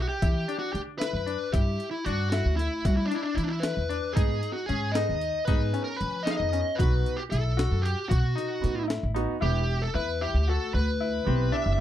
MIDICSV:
0, 0, Header, 1, 6, 480
1, 0, Start_track
1, 0, Tempo, 525855
1, 203, Time_signature, 5, 3, 24, 8
1, 10775, End_track
2, 0, Start_track
2, 0, Title_t, "Lead electric guitar"
2, 0, Program_c, 0, 29
2, 17, Note_on_c, 0, 66, 65
2, 73, Note_off_c, 0, 66, 0
2, 77, Note_on_c, 0, 67, 71
2, 521, Note_off_c, 0, 67, 0
2, 538, Note_on_c, 0, 66, 66
2, 660, Note_off_c, 0, 66, 0
2, 665, Note_on_c, 0, 67, 73
2, 732, Note_off_c, 0, 67, 0
2, 897, Note_on_c, 0, 71, 78
2, 1391, Note_on_c, 0, 67, 79
2, 1404, Note_off_c, 0, 71, 0
2, 1738, Note_off_c, 0, 67, 0
2, 1742, Note_on_c, 0, 64, 64
2, 1867, Note_off_c, 0, 64, 0
2, 1867, Note_on_c, 0, 66, 83
2, 2086, Note_off_c, 0, 66, 0
2, 2097, Note_on_c, 0, 66, 78
2, 2331, Note_off_c, 0, 66, 0
2, 2342, Note_on_c, 0, 64, 78
2, 2597, Note_off_c, 0, 64, 0
2, 2614, Note_on_c, 0, 66, 62
2, 2704, Note_off_c, 0, 66, 0
2, 2709, Note_on_c, 0, 64, 63
2, 2787, Note_on_c, 0, 62, 64
2, 2793, Note_off_c, 0, 64, 0
2, 2866, Note_on_c, 0, 64, 57
2, 2874, Note_off_c, 0, 62, 0
2, 2938, Note_on_c, 0, 62, 65
2, 2955, Note_off_c, 0, 64, 0
2, 3055, Note_on_c, 0, 64, 74
2, 3073, Note_off_c, 0, 62, 0
2, 3130, Note_off_c, 0, 64, 0
2, 3132, Note_on_c, 0, 62, 65
2, 3175, Note_on_c, 0, 64, 69
2, 3196, Note_off_c, 0, 62, 0
2, 3284, Note_on_c, 0, 71, 78
2, 3312, Note_off_c, 0, 64, 0
2, 3767, Note_on_c, 0, 68, 84
2, 3797, Note_off_c, 0, 71, 0
2, 4133, Note_off_c, 0, 68, 0
2, 4137, Note_on_c, 0, 66, 72
2, 4254, Note_off_c, 0, 66, 0
2, 4254, Note_on_c, 0, 68, 77
2, 4489, Note_on_c, 0, 75, 86
2, 4515, Note_off_c, 0, 68, 0
2, 4950, Note_off_c, 0, 75, 0
2, 4975, Note_on_c, 0, 71, 76
2, 5322, Note_off_c, 0, 71, 0
2, 5330, Note_on_c, 0, 70, 76
2, 5445, Note_off_c, 0, 70, 0
2, 5445, Note_on_c, 0, 71, 86
2, 5687, Note_on_c, 0, 75, 85
2, 5711, Note_off_c, 0, 71, 0
2, 5759, Note_off_c, 0, 75, 0
2, 5762, Note_on_c, 0, 77, 73
2, 5810, Note_off_c, 0, 77, 0
2, 5814, Note_on_c, 0, 75, 88
2, 6168, Note_on_c, 0, 71, 83
2, 6194, Note_off_c, 0, 75, 0
2, 6538, Note_on_c, 0, 67, 72
2, 6556, Note_off_c, 0, 71, 0
2, 6584, Note_off_c, 0, 67, 0
2, 6664, Note_on_c, 0, 69, 88
2, 7137, Note_on_c, 0, 67, 72
2, 7168, Note_off_c, 0, 69, 0
2, 7382, Note_off_c, 0, 67, 0
2, 7385, Note_on_c, 0, 66, 70
2, 8078, Note_off_c, 0, 66, 0
2, 8599, Note_on_c, 0, 67, 74
2, 8963, Note_on_c, 0, 69, 73
2, 8972, Note_off_c, 0, 67, 0
2, 9080, Note_off_c, 0, 69, 0
2, 9083, Note_on_c, 0, 71, 77
2, 9322, Note_on_c, 0, 67, 76
2, 9330, Note_off_c, 0, 71, 0
2, 9570, Note_off_c, 0, 67, 0
2, 9580, Note_on_c, 0, 69, 74
2, 9795, Note_off_c, 0, 69, 0
2, 9807, Note_on_c, 0, 71, 88
2, 10520, Note_on_c, 0, 76, 89
2, 10546, Note_off_c, 0, 71, 0
2, 10775, Note_off_c, 0, 76, 0
2, 10775, End_track
3, 0, Start_track
3, 0, Title_t, "Grand piano"
3, 0, Program_c, 1, 0
3, 0, Note_on_c, 1, 64, 69
3, 98, Note_off_c, 1, 64, 0
3, 202, Note_on_c, 1, 64, 70
3, 391, Note_off_c, 1, 64, 0
3, 440, Note_on_c, 1, 62, 66
3, 818, Note_off_c, 1, 62, 0
3, 910, Note_on_c, 1, 64, 63
3, 1103, Note_off_c, 1, 64, 0
3, 1154, Note_on_c, 1, 62, 62
3, 1346, Note_off_c, 1, 62, 0
3, 1396, Note_on_c, 1, 64, 75
3, 1775, Note_off_c, 1, 64, 0
3, 1879, Note_on_c, 1, 62, 62
3, 2068, Note_off_c, 1, 62, 0
3, 2127, Note_on_c, 1, 64, 71
3, 2502, Note_off_c, 1, 64, 0
3, 2599, Note_on_c, 1, 64, 69
3, 2789, Note_off_c, 1, 64, 0
3, 2838, Note_on_c, 1, 62, 61
3, 3217, Note_off_c, 1, 62, 0
3, 3311, Note_on_c, 1, 64, 66
3, 3504, Note_off_c, 1, 64, 0
3, 3554, Note_on_c, 1, 62, 62
3, 3746, Note_off_c, 1, 62, 0
3, 3795, Note_on_c, 1, 63, 70
3, 4175, Note_off_c, 1, 63, 0
3, 4278, Note_on_c, 1, 61, 58
3, 4468, Note_off_c, 1, 61, 0
3, 4520, Note_on_c, 1, 63, 72
3, 4899, Note_off_c, 1, 63, 0
3, 4999, Note_on_c, 1, 63, 77
3, 5189, Note_off_c, 1, 63, 0
3, 5232, Note_on_c, 1, 61, 62
3, 5614, Note_off_c, 1, 61, 0
3, 5717, Note_on_c, 1, 63, 71
3, 5908, Note_off_c, 1, 63, 0
3, 5955, Note_on_c, 1, 61, 59
3, 6147, Note_off_c, 1, 61, 0
3, 6192, Note_on_c, 1, 66, 75
3, 6574, Note_off_c, 1, 66, 0
3, 6675, Note_on_c, 1, 64, 63
3, 6867, Note_off_c, 1, 64, 0
3, 6910, Note_on_c, 1, 66, 74
3, 7293, Note_off_c, 1, 66, 0
3, 7390, Note_on_c, 1, 66, 75
3, 7584, Note_off_c, 1, 66, 0
3, 7627, Note_on_c, 1, 63, 69
3, 8011, Note_off_c, 1, 63, 0
3, 8103, Note_on_c, 1, 64, 68
3, 8300, Note_off_c, 1, 64, 0
3, 8347, Note_on_c, 1, 63, 57
3, 8542, Note_off_c, 1, 63, 0
3, 8588, Note_on_c, 1, 64, 80
3, 8972, Note_off_c, 1, 64, 0
3, 9081, Note_on_c, 1, 64, 70
3, 9271, Note_off_c, 1, 64, 0
3, 9325, Note_on_c, 1, 64, 71
3, 9513, Note_off_c, 1, 64, 0
3, 9563, Note_on_c, 1, 66, 66
3, 9941, Note_off_c, 1, 66, 0
3, 10044, Note_on_c, 1, 64, 75
3, 10233, Note_off_c, 1, 64, 0
3, 10283, Note_on_c, 1, 60, 72
3, 10472, Note_off_c, 1, 60, 0
3, 10517, Note_on_c, 1, 62, 83
3, 10775, Note_off_c, 1, 62, 0
3, 10775, End_track
4, 0, Start_track
4, 0, Title_t, "Grand piano"
4, 0, Program_c, 2, 0
4, 3782, Note_on_c, 2, 59, 51
4, 3794, Note_on_c, 2, 63, 44
4, 3798, Note_on_c, 2, 68, 62
4, 3959, Note_off_c, 2, 59, 0
4, 3965, Note_off_c, 2, 63, 0
4, 3967, Note_off_c, 2, 68, 0
4, 4504, Note_on_c, 2, 59, 57
4, 4513, Note_on_c, 2, 63, 55
4, 4523, Note_on_c, 2, 68, 68
4, 4680, Note_off_c, 2, 59, 0
4, 4685, Note_off_c, 2, 63, 0
4, 4690, Note_off_c, 2, 68, 0
4, 4994, Note_on_c, 2, 59, 61
4, 5000, Note_on_c, 2, 63, 54
4, 5008, Note_on_c, 2, 68, 65
4, 5334, Note_off_c, 2, 59, 0
4, 5337, Note_off_c, 2, 63, 0
4, 5340, Note_off_c, 2, 68, 0
4, 5705, Note_on_c, 2, 59, 54
4, 5712, Note_on_c, 2, 63, 50
4, 5721, Note_on_c, 2, 68, 61
4, 6049, Note_off_c, 2, 59, 0
4, 6053, Note_off_c, 2, 63, 0
4, 6057, Note_off_c, 2, 68, 0
4, 6193, Note_on_c, 2, 59, 50
4, 6198, Note_on_c, 2, 63, 49
4, 6206, Note_on_c, 2, 66, 62
4, 6534, Note_off_c, 2, 59, 0
4, 6536, Note_off_c, 2, 63, 0
4, 6540, Note_off_c, 2, 66, 0
4, 7863, Note_on_c, 2, 59, 50
4, 7869, Note_on_c, 2, 63, 45
4, 7876, Note_on_c, 2, 66, 54
4, 8041, Note_off_c, 2, 59, 0
4, 8044, Note_off_c, 2, 63, 0
4, 8047, Note_off_c, 2, 66, 0
4, 8350, Note_on_c, 2, 59, 69
4, 8359, Note_on_c, 2, 63, 64
4, 8361, Note_on_c, 2, 66, 76
4, 8524, Note_off_c, 2, 59, 0
4, 8529, Note_off_c, 2, 63, 0
4, 8530, Note_off_c, 2, 66, 0
4, 8581, Note_on_c, 2, 59, 64
4, 8595, Note_on_c, 2, 64, 54
4, 8603, Note_on_c, 2, 67, 73
4, 8760, Note_off_c, 2, 59, 0
4, 8767, Note_off_c, 2, 64, 0
4, 8771, Note_off_c, 2, 67, 0
4, 10266, Note_on_c, 2, 59, 54
4, 10274, Note_on_c, 2, 64, 51
4, 10280, Note_on_c, 2, 67, 67
4, 10745, Note_off_c, 2, 59, 0
4, 10754, Note_off_c, 2, 67, 0
4, 10775, Note_off_c, 2, 64, 0
4, 10775, End_track
5, 0, Start_track
5, 0, Title_t, "Upright bass"
5, 0, Program_c, 3, 32
5, 205, Note_on_c, 3, 52, 78
5, 404, Note_off_c, 3, 52, 0
5, 680, Note_on_c, 3, 50, 74
5, 981, Note_off_c, 3, 50, 0
5, 1034, Note_on_c, 3, 42, 70
5, 1237, Note_off_c, 3, 42, 0
5, 1405, Note_on_c, 3, 43, 77
5, 1603, Note_off_c, 3, 43, 0
5, 1881, Note_on_c, 3, 43, 70
5, 2181, Note_off_c, 3, 43, 0
5, 2239, Note_on_c, 3, 38, 66
5, 2440, Note_off_c, 3, 38, 0
5, 2603, Note_on_c, 3, 55, 77
5, 2802, Note_off_c, 3, 55, 0
5, 3076, Note_on_c, 3, 52, 74
5, 3378, Note_off_c, 3, 52, 0
5, 3441, Note_on_c, 3, 40, 72
5, 3641, Note_off_c, 3, 40, 0
5, 3804, Note_on_c, 3, 44, 79
5, 4003, Note_off_c, 3, 44, 0
5, 4283, Note_on_c, 3, 44, 71
5, 4583, Note_off_c, 3, 44, 0
5, 4648, Note_on_c, 3, 39, 69
5, 4845, Note_off_c, 3, 39, 0
5, 5005, Note_on_c, 3, 44, 80
5, 5204, Note_off_c, 3, 44, 0
5, 5484, Note_on_c, 3, 53, 77
5, 5783, Note_off_c, 3, 53, 0
5, 5840, Note_on_c, 3, 41, 72
5, 6041, Note_off_c, 3, 41, 0
5, 6205, Note_on_c, 3, 35, 83
5, 6404, Note_off_c, 3, 35, 0
5, 6681, Note_on_c, 3, 35, 80
5, 6982, Note_off_c, 3, 35, 0
5, 7040, Note_on_c, 3, 42, 69
5, 7241, Note_off_c, 3, 42, 0
5, 7406, Note_on_c, 3, 47, 87
5, 7605, Note_off_c, 3, 47, 0
5, 7884, Note_on_c, 3, 45, 71
5, 8184, Note_off_c, 3, 45, 0
5, 8245, Note_on_c, 3, 33, 73
5, 8444, Note_off_c, 3, 33, 0
5, 8600, Note_on_c, 3, 28, 87
5, 9001, Note_off_c, 3, 28, 0
5, 9077, Note_on_c, 3, 40, 77
5, 9380, Note_off_c, 3, 40, 0
5, 9439, Note_on_c, 3, 38, 73
5, 9641, Note_off_c, 3, 38, 0
5, 9804, Note_on_c, 3, 38, 90
5, 10204, Note_off_c, 3, 38, 0
5, 10286, Note_on_c, 3, 35, 95
5, 10485, Note_off_c, 3, 35, 0
5, 10641, Note_on_c, 3, 30, 83
5, 10775, Note_off_c, 3, 30, 0
5, 10775, End_track
6, 0, Start_track
6, 0, Title_t, "Drums"
6, 203, Note_on_c, 9, 42, 67
6, 204, Note_on_c, 9, 36, 88
6, 295, Note_off_c, 9, 42, 0
6, 296, Note_off_c, 9, 36, 0
6, 446, Note_on_c, 9, 42, 50
6, 537, Note_off_c, 9, 42, 0
6, 685, Note_on_c, 9, 42, 46
6, 776, Note_off_c, 9, 42, 0
6, 926, Note_on_c, 9, 38, 80
6, 926, Note_on_c, 9, 42, 62
6, 1017, Note_off_c, 9, 38, 0
6, 1017, Note_off_c, 9, 42, 0
6, 1164, Note_on_c, 9, 42, 52
6, 1256, Note_off_c, 9, 42, 0
6, 1402, Note_on_c, 9, 36, 89
6, 1402, Note_on_c, 9, 42, 65
6, 1493, Note_off_c, 9, 36, 0
6, 1494, Note_off_c, 9, 42, 0
6, 1642, Note_on_c, 9, 42, 49
6, 1733, Note_off_c, 9, 42, 0
6, 1880, Note_on_c, 9, 42, 48
6, 1972, Note_off_c, 9, 42, 0
6, 2119, Note_on_c, 9, 38, 82
6, 2119, Note_on_c, 9, 42, 62
6, 2210, Note_off_c, 9, 38, 0
6, 2210, Note_off_c, 9, 42, 0
6, 2366, Note_on_c, 9, 38, 29
6, 2366, Note_on_c, 9, 42, 55
6, 2458, Note_off_c, 9, 38, 0
6, 2458, Note_off_c, 9, 42, 0
6, 2602, Note_on_c, 9, 36, 87
6, 2602, Note_on_c, 9, 42, 68
6, 2693, Note_off_c, 9, 42, 0
6, 2694, Note_off_c, 9, 36, 0
6, 2843, Note_on_c, 9, 42, 55
6, 2934, Note_off_c, 9, 42, 0
6, 3083, Note_on_c, 9, 42, 50
6, 3174, Note_off_c, 9, 42, 0
6, 3317, Note_on_c, 9, 38, 84
6, 3317, Note_on_c, 9, 42, 72
6, 3408, Note_off_c, 9, 38, 0
6, 3408, Note_off_c, 9, 42, 0
6, 3564, Note_on_c, 9, 42, 51
6, 3655, Note_off_c, 9, 42, 0
6, 3803, Note_on_c, 9, 36, 94
6, 3804, Note_on_c, 9, 42, 70
6, 3894, Note_off_c, 9, 36, 0
6, 3896, Note_off_c, 9, 42, 0
6, 4042, Note_on_c, 9, 42, 53
6, 4133, Note_off_c, 9, 42, 0
6, 4282, Note_on_c, 9, 42, 46
6, 4374, Note_off_c, 9, 42, 0
6, 4520, Note_on_c, 9, 38, 94
6, 4520, Note_on_c, 9, 42, 68
6, 4612, Note_off_c, 9, 38, 0
6, 4612, Note_off_c, 9, 42, 0
6, 4759, Note_on_c, 9, 42, 49
6, 4851, Note_off_c, 9, 42, 0
6, 4998, Note_on_c, 9, 42, 63
6, 5002, Note_on_c, 9, 36, 96
6, 5089, Note_off_c, 9, 42, 0
6, 5093, Note_off_c, 9, 36, 0
6, 5238, Note_on_c, 9, 42, 51
6, 5329, Note_off_c, 9, 42, 0
6, 5483, Note_on_c, 9, 42, 43
6, 5574, Note_off_c, 9, 42, 0
6, 5724, Note_on_c, 9, 38, 88
6, 5724, Note_on_c, 9, 42, 59
6, 5815, Note_off_c, 9, 38, 0
6, 5815, Note_off_c, 9, 42, 0
6, 5963, Note_on_c, 9, 42, 56
6, 6054, Note_off_c, 9, 42, 0
6, 6202, Note_on_c, 9, 36, 96
6, 6205, Note_on_c, 9, 42, 69
6, 6293, Note_off_c, 9, 36, 0
6, 6297, Note_off_c, 9, 42, 0
6, 6447, Note_on_c, 9, 42, 53
6, 6538, Note_off_c, 9, 42, 0
6, 6685, Note_on_c, 9, 42, 55
6, 6776, Note_off_c, 9, 42, 0
6, 6929, Note_on_c, 9, 38, 91
6, 6929, Note_on_c, 9, 42, 69
6, 7020, Note_off_c, 9, 38, 0
6, 7020, Note_off_c, 9, 42, 0
6, 7170, Note_on_c, 9, 42, 54
6, 7262, Note_off_c, 9, 42, 0
6, 7402, Note_on_c, 9, 36, 94
6, 7407, Note_on_c, 9, 42, 72
6, 7493, Note_off_c, 9, 36, 0
6, 7498, Note_off_c, 9, 42, 0
6, 7650, Note_on_c, 9, 38, 29
6, 7650, Note_on_c, 9, 42, 55
6, 7741, Note_off_c, 9, 38, 0
6, 7741, Note_off_c, 9, 42, 0
6, 7884, Note_on_c, 9, 38, 28
6, 7884, Note_on_c, 9, 42, 50
6, 7975, Note_off_c, 9, 38, 0
6, 7975, Note_off_c, 9, 42, 0
6, 8125, Note_on_c, 9, 38, 88
6, 8125, Note_on_c, 9, 42, 63
6, 8217, Note_off_c, 9, 38, 0
6, 8217, Note_off_c, 9, 42, 0
6, 8362, Note_on_c, 9, 42, 56
6, 8454, Note_off_c, 9, 42, 0
6, 10775, End_track
0, 0, End_of_file